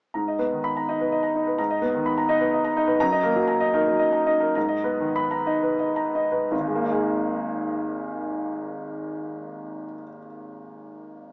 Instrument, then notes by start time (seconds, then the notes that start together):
grand piano
0.14 G#2 A#5
0.28 D#5
0.39 B3 B4
0.52 D#3
0.64 B5
0.77 A#5
0.89 D#4 D#5
1.01 B4
1.12 D#5
1.23 A#5
1.35 D#4 D#5
1.47 B4
1.58 G#2 A#5
1.71 D#5
1.82 B3 B4
1.95 D#3
2.06 B5
2.18 A#5
2.29 D#4 D#5
2.41 B4
2.54 D#5
2.65 A#5
2.77 D#4 D#5
2.88 B4
3.00 F#2 A#5
3.12 D#5
3.23 A#3 A#4
3.36 F#3
3.48 A#5
3.60 D#5
3.74 D#4 A#4
3.88 F#3
3.99 D#5
4.13 A#5
4.26 D#4 D#5
4.40 A#4
4.55 G#2 A#5
4.68 D#5
4.84 B3 B4
5.00 D#3
5.16 B5
5.31 A#5
5.46 D#4 D#5
5.63 B4
5.79 D#5
5.96 A#5
6.15 D#4 D#5
6.32 B4
6.51 G#1
6.59 D#2
6.67 G#3
6.75 A#3
6.83 D#4
6.91 G#4